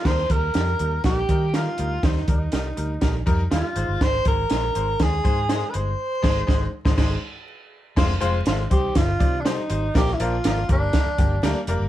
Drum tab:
CC |x---------------|----------------|----------------|--x-----x-------|
HH |--x-x-x-x-x-x-x-|x-x-x-x-x-x-x-x-|x-x-x-x-x-x-x-x-|----------------|
SD |oo--o---o---o---|oo--o---o---o---|oo--o---o---o---|--o-o--oo-------|
BD |o-o-----o-o-----|o-o-----o-o-----|o-o-----o-o-----|--o-o--oo-------|

CC |x---------------|----------------|
HH |--x-x-x-x-x-x-x-|x-x-x-x-x-x-x-x-|
SD |oo--o---o---o---|oo--o---o---o---|
BD |o-----o-o-o-----|o-----o-o-o-----|